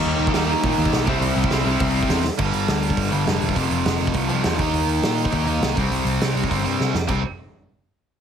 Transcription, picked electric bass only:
\new Staff \with { instrumentName = "Picked electric bass" } { \clef bass \time 4/4 \key g \mixolydian \tempo 4 = 204 ees,8 ees,8 ees,4 bes,8 ees,8 b,,8 c,8 | c,8 c,8 c,8 c,8 c,4 e,4 | g,,8 g,,8 d,4 g,,8 g,,8 f,,8 e,,8 | f,,8 f,,8 f,,8 f,,8 c,8 c,8 e,8 ees,8 |
ees,8 ees,8 bes,4 ees,8 ees,8 c,8 c,8 | c,8 c,8 c,8 c,8 g,,8 g,8 c8 f,8 | c,8 r2. r8 | }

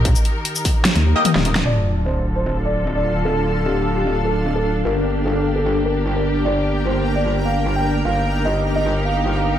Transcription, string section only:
\new Staff \with { instrumentName = "String section" } { \time 4/4 \key d \phrygian \tempo 4 = 150 << { <ees g' bes'>1 | <d f' a'>1~ | <d f' a'>1 | g'1~ |
g'1 | <ees' g'>1 | } \\ { ees'1 | d'1~ | d'1 | bes1~ |
bes1~ | bes1 | } >> }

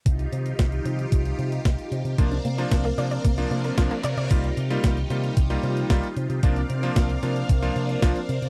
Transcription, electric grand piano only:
\new Staff \with { instrumentName = "Electric grand piano" } { \time 4/4 \key ees \major \tempo 4 = 113 r1 | <f bes d' f'>16 r8 <f bes d' f'>8 r16 <f bes d' f'>8 r16 <f bes d' f'>8. <f bes d' f'>16 r8. | <g bes ees' f'>16 r8 <g bes ees' f'>8 r16 <g bes ees' f'>8 r16 <g bes ees' f'>8. <g bes ees' f'>16 r8. | <f bes d' f'>16 r8 <f bes d' f'>8 r16 <f bes d' f'>8 r16 <f bes d' f'>8. <f bes d' f'>16 r8. | }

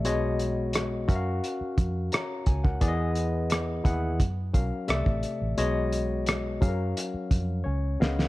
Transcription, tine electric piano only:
\new Staff \with { instrumentName = "Tine electric piano" } { \time 4/4 \key fis \major \tempo 4 = 87 << { r2. <cis'' ais''>8 gis''16 <ais' fis''>16~ | <ais' fis''>16 r2. r8. | r2. <cis' cis''>4 | } \\ { <b, gis cis'' dis''>4 r8 <cis' fis' ais' e'' eis''>4. r4 | <e b gis' d'' dis''>4 r8 <b e' gis' fis''>8 r8 <fis cis' ais' eis''>8 <c a d'' e''>4 | <b, gis cis'' dis''>4 r8 <fis cis' gis' ais' eis''>4 r4 <cis b dis'' eis''>8 | } >> }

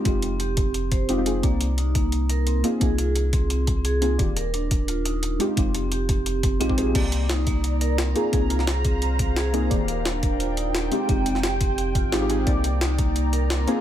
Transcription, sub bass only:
\new Staff \with { instrumentName = "Sub bass" } { \clef bass \time 4/4 \key c \minor \tempo 4 = 174 f,,1 | c,2.~ c,8 r8 | c,1 | ees,,2.~ ees,,8 r8 |
f,,2~ f,,8 f,,8 bes,,4 | c,2.~ c,8 r8 | c,1 | ees,,2.~ ees,,8 r8 |
f,,2~ f,,8. aes,,4~ aes,,16 | c,2.~ c,8 r8 | }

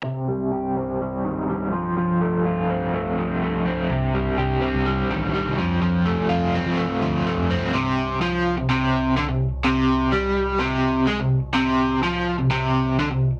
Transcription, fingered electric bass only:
\new Staff \with { instrumentName = "Fingered electric bass" } { \clef bass \time 4/4 \key f \mixolydian \tempo 4 = 125 r1 | r1 | c,4 c,8 r16 c,8. a,,8 r16 c,16 f,8~ | f,4 f,8. f8 r16 d,8 r16 f,8 r16 |
r1 | r1 | r1 | }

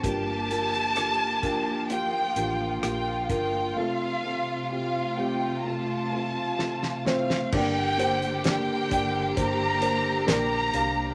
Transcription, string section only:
\new Staff \with { instrumentName = "String section" } { \time 4/4 \key g \minor \tempo 4 = 64 << { g'2 f'2~ | f'1 | g'1 | } \\ { <f bes>1 | <c a>1 | <d bes>1 | } >> }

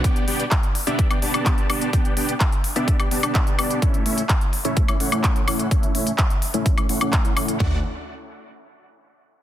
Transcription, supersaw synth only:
\new Staff \with { instrumentName = "Supersaw synth" } { \time 4/4 \key d \major \tempo 4 = 127 <b d' g' d'' g''>8 <b d' g' d'' g''>16 r4 <b d' g' d'' e''>8 <b d' g' d'' g''>16 <b d' g' d'' a''>16 <b d' g' d'' a''>8. <b d' g' d'' a''>8 | <b d' g' d'' g''>8 <b d' g' d'' g''>16 r4 <b d' g' d'' e''>8 <b d' g' d'' g''>16 <b d' g' d'' a''>16 <b d' g' d'' a''>8. <b d' g' d'' a''>8 | <a e' e''>8 <a cis' e' cis'' e''>16 r4 <a cis' e' cis'' e''>8 <a cis' e' cis'' e''>16 <a cis' e' cis'' fis''>16 <a cis' e' cis'' fis''>8. <a cis' e' cis'' fis''>8 | <a cis' e' cis''>8 <a cis' e' cis'' e''>16 r4 <a cis' e' cis'' e''>8 <a cis' e' cis'' e''>16 <a cis' e' cis'' fis''>16 <a cis' e' cis'' fis''>8. <a cis' e' cis'' fis''>8 |
<a d' fis' d'' fis''>8 r2. r8 | }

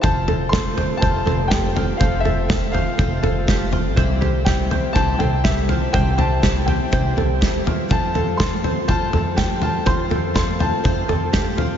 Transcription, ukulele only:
\new Staff \with { instrumentName = "Ukulele" } { \time 4/4 \key f \lydian \tempo 4 = 122 c''8 a'8 a'8 c''8 c''8 a'8 g'8 f'8 | c''8 a'8 a'8 c''8 c''8 a'8 g'8 f'8 | c''8 g'8 g'8 c''8 c''8 a'8 g'8 f'8 | c''8 g'8 g'8 c''8 c''8 a'8 g'8 f'8 |
c''8 a'8 a'8 c''8 c''8 a'8 g'8 f'8 | c''8 a'8 a'8 c''8 c''8 a'8 g'8 f'8 | }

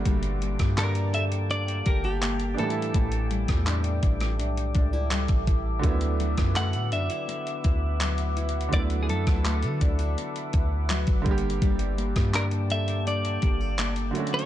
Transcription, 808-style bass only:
\new Staff \with { instrumentName = "808-style bass" } { \clef bass \time 4/4 \key d \major \tempo 4 = 83 g,,8. g,4.~ g,16 g,,4 r8 | a,,8. e,8. a,,8 b,,8 cis,8. a,,8. | d,8. fis,8 a,16 fis,16 r8. d,4. | d,8 fis,16 d,8 d16 d,8 r8 d,8. g,,8. |
g,,8. g,4.~ g,16 g,,4 r8 | }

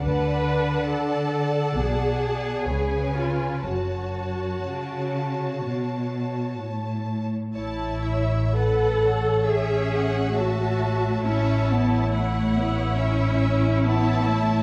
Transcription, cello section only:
\new Staff \with { instrumentName = "Cello section" } { \time 4/4 \key fis \minor \tempo 4 = 67 d2 b,4 cis4 | fis,4 cis4 b,4 a,4 | \key a \major r2 cis'4 a4 | cis'8 b8 a8 b8 cis'4 b8 a8 | }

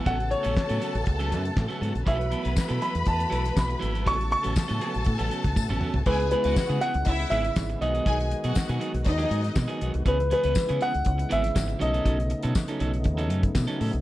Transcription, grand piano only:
\new Staff \with { instrumentName = "Grand piano" } { \time 4/4 \key cis \minor \tempo 4 = 120 fis''8 cis''4. r2 | e''4. b''8 a''4 b''4 | cis'''8 cis'''4. r2 | b'8 b'4 fis''4 e''4 dis''8~ |
dis''2~ dis''8 r4. | b'8 b'4 fis''4 e''4 dis''8~ | dis''2~ dis''8 r4. | }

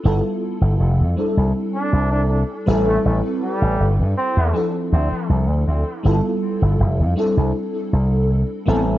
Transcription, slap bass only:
\new Staff \with { instrumentName = "Slap bass" } { \clef bass \time 4/4 \key c \major \tempo 4 = 80 g,,16 r8 g,,16 f,,16 f,16 r16 c,16 r8 c,8. r16 a,,8 | a,,16 r8 a,,16 g,,16 g,16 r16 e,16 r8 d,16 r16 c,16 d,16 d,16 r16 | g,,16 r8 g,,16 f,,16 f,16 r16 c,16 r8 c,8. r16 a,,8 | }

